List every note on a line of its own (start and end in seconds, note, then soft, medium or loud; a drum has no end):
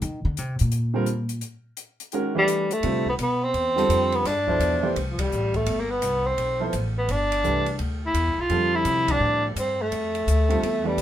0.02 0.24 D#3 medium
0.02 closed hi-hat soft
0.25 0.38 D3 medium
0.37 0.60 C3 medium
0.37 closed hi-hat soft
0.59 1.39 A#2 medium
0.59 closed hi-hat soft
0.72 closed hi-hat soft
0.94 1.06 D3 medium
0.94 1.06 G3 medium
0.94 1.06 C4 medium
0.94 1.06 F4 medium
0.94 1.07 A#4 medium
1.06 closed hi-hat soft
1.29 closed hi-hat soft
1.41 closed hi-hat soft
1.77 closed hi-hat soft
2.00 closed hi-hat soft
2.12 2.34 D#3 medium
2.12 2.34 G#3 medium
2.12 2.34 C#4 medium
2.12 2.34 F#4 medium
2.12 2.34 A#4 medium
2.12 closed hi-hat soft
2.35 2.66 E3 medium
2.35 2.74 G3 medium
2.35 2.66 A3 medium
2.35 2.67 D4 medium
2.35 2.67 G4 medium
2.35 2.67 B4 medium
2.48 closed hi-hat medium
2.71 3.07 A3 loud
2.71 closed hi-hat soft
2.83 3.18 C3 medium
2.83 3.04 D3 medium
2.83 3.04 G3 medium
2.83 3.04 C4 medium
2.83 3.04 F4 medium
2.83 3.05 A4 medium
2.83 ride medium
3.06 3.14 B3 medium
3.06 kick soft
3.19 3.53 B2 medium
3.19 3.45 B3 medium
3.19 hi-hat pedal soft
3.19 ride medium
3.44 4.17 C4 medium
3.54 3.88 E2 medium
3.54 ride soft
3.76 4.22 D3 medium
3.76 4.22 G3 medium
3.76 4.22 C4 medium
3.76 4.22 F4 medium
3.76 4.23 A4 medium
3.76 snare soft
3.89 4.24 F2 medium
3.89 hi-hat pedal medium
3.89 ride medium
4.12 4.28 B3 medium
4.12 ride soft
4.25 4.59 G2 medium
4.25 4.97 D4 medium
4.25 snare soft
4.25 ride medium
4.47 4.81 B2 medium
4.47 4.81 F3 medium
4.47 4.81 E4 medium
4.47 4.81 A4 medium
4.47 4.81 C5 medium
4.47 kick soft
4.59 4.94 E2 medium
4.59 hi-hat pedal medium
4.59 ride medium
4.83 4.94 E3 medium
4.83 4.94 A3 medium
4.83 4.94 D4 medium
4.83 4.94 G4 medium
4.83 4.95 C5 medium
4.96 5.30 C2 medium
4.96 ride medium
5.11 5.22 F3 medium
5.18 5.57 G3 medium
5.18 kick medium
5.18 ride medium
5.31 5.65 A1 medium
5.31 hi-hat pedal soft
5.54 5.81 A3 medium
5.54 kick medium
5.54 ride soft
5.66 6.01 G1 medium
5.66 ride medium
5.80 5.92 A#3 medium
5.90 6.28 B3 medium
6.01 6.36 C2 medium
6.01 hi-hat pedal medium
6.01 ride medium
6.26 6.67 C4 medium
6.38 6.72 B1 medium
6.38 ride soft
6.60 6.71 F3 medium
6.60 6.72 B3 medium
6.60 6.72 E4 medium
6.60 6.72 A4 medium
6.60 6.72 C5 medium
6.73 7.07 A1 medium
6.73 hi-hat pedal medium
6.73 ride medium
6.98 7.13 B3 medium
7.08 7.43 G1 medium
7.08 7.81 D4 medium
7.08 ride medium
7.32 ride medium
7.44 7.78 C2 medium
7.44 7.64 E3 medium
7.44 7.65 A3 soft
7.44 7.65 D4 soft
7.44 7.65 G4 soft
7.44 7.65 B4 medium
7.44 hi-hat pedal soft
7.66 ride soft
7.79 8.13 D2 medium
7.79 ride soft
8.06 8.42 E4 medium
8.14 8.28 E2 medium
8.14 hi-hat pedal soft
8.14 ride medium
8.26 8.37 C2 soft
8.38 8.49 B1 medium
8.38 8.76 F4 medium
8.50 8.84 F2 medium
8.50 9.48 D3 medium
8.50 9.49 F3 soft
8.50 9.49 G3 soft
8.50 9.49 C4 medium
8.50 9.49 A4 medium
8.50 ride medium
8.75 9.13 E4 medium
8.85 9.19 C3 medium
8.85 hi-hat pedal medium
8.85 ride medium
9.08 9.45 D4 loud
9.08 kick medium
9.08 ride medium
9.20 9.55 A2 medium
9.56 9.90 G2 medium
9.56 9.83 C4 medium
9.56 hi-hat pedal medium
9.56 ride medium
9.81 10.88 A3 medium
9.91 10.26 F2 medium
9.91 ride medium
10.15 ride soft
10.27 10.61 D2 medium
10.27 hi-hat pedal medium
10.27 ride medium
10.49 10.61 D3 medium
10.49 10.61 G3 medium
10.49 10.61 C4 medium
10.49 10.61 F4 medium
10.49 10.61 A4 medium
10.49 ride soft
10.62 10.96 E2 medium
10.62 ride medium
10.84 10.96 E3 medium
10.84 11.02 G3 medium
10.84 10.96 A3 soft
10.84 10.96 D4 soft
10.84 10.97 G4 soft
10.84 10.97 B4 medium
10.97 11.02 C2 medium
10.97 hi-hat pedal medium
10.97 ride medium